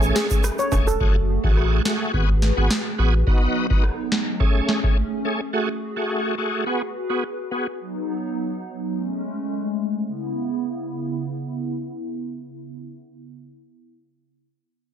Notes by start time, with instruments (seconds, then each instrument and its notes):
Already playing: sub bass A1, tonewheel organ A3 C#4 G#4, analog synth pad A3 C#4 G#4
0.02 shaker
0.16 steel pan G#4, snare, closed hi-hat
0.30 tonewheel organ A3 C#4 G#4, kick, shaker
0.44 cross-stick, closed hi-hat, shaker
0.59 steel pan C#5, shaker
0.72 sub bass E1, tonewheel organ A3 C#4 G#4, kick, closed hi-hat, high timbale, shaker
0.87 steel pan A4, shaker
1.00 sub bass F#1, tonewheel organ A3 F#4 G#4, analog synth pad A3 F#4 G#4, kick
1.44 sub bass A1, tonewheel organ A3 F#4 G#4, kick
1.57 cross-stick
1.85 tonewheel organ A3 F#4 G#4, snare
2.13 sub bass G#1, tonewheel organ B3 F#4 G#4, analog synth pad B4, kick
2.42 snare
2.57 sub bass G#1, tonewheel organ B3 F#4 G#4
2.70 snare
2.98 sub bass A1, tonewheel organ B3 F#4 G#4
3.27 analog synth pad F#3 B3 D#4, tonewheel organ B3 D#4 F#4, kick
3.70 tonewheel organ B3 D#4 F#4, kick
3.84 cross-stick
4.12 snare
4.40 tonewheel organ A3 C#4 G#4, analog synth pad A3 C#4 G#4, kick
4.69 snare
4.83 tonewheel organ A3 C#4 G#4, kick
5.25 tonewheel organ A3 C#4 G#4
5.53 tonewheel organ A3 F#4 G#4, analog synth pad F#4
5.96 tonewheel organ A3 F#4 G#4
6.38 tonewheel organ A3 F#4 G#4
6.66 tonewheel organ B3 F#4 G#4, analog synth pad B4
7.10 tonewheel organ B3 F#4 G#4
7.51 tonewheel organ B3 F#4 G#4
7.80 analog synth pad F#3 B3 D#4
8.93 analog synth pad G#3 A3 C#4
10.06 analog synth pad C#3 B3 E4